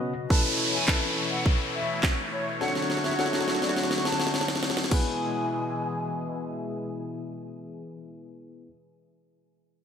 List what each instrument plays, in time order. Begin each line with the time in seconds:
Already playing: analog synth pad B2 C#3 F#3 B3 F#4, tine electric piano B3 C#4 F#4 B4 D#5
0.30 analog synth pad B2 E3 A3 E4 C#5, tine electric piano C#4 E4 A4 B4, flute A5, kick, downlifter
0.74 flute G#5
0.88 tine electric piano C#4 E4 A4 B4, flute A5, kick, snare, clap
1.31 flute F#5
1.46 kick
1.75 flute E5
2.03 kick, snare, clap
2.33 flute C#5
2.61 analog synth pad D3 F#3 F#4, tine electric piano D4 F#4 A4 C#5, flute F#5, snare
2.68 snare
2.75 snare
2.82 snare
2.90 snare
2.97 snare
3.04 flute E5, snare
3.11 snare
3.19 tine electric piano D4 F#4 A4 C#5, flute F#5, snare
3.26 snare
3.33 snare
3.41 snare
3.48 snare
3.55 snare
3.62 flute D5, snare
3.69 snare
3.76 snare
3.83 snare
3.91 snare
3.98 snare
4.05 flute A5, snare
4.12 snare
4.20 snare
4.27 snare
4.34 snare
4.41 snare
4.48 snare
4.56 snare
4.63 snare
4.70 snare
4.77 snare
4.84 snare
4.90 analog synth pad B2 E3 G#3 E4 G#4, tine electric piano B3 E4 G#4 B4, flute G#5, kick, crash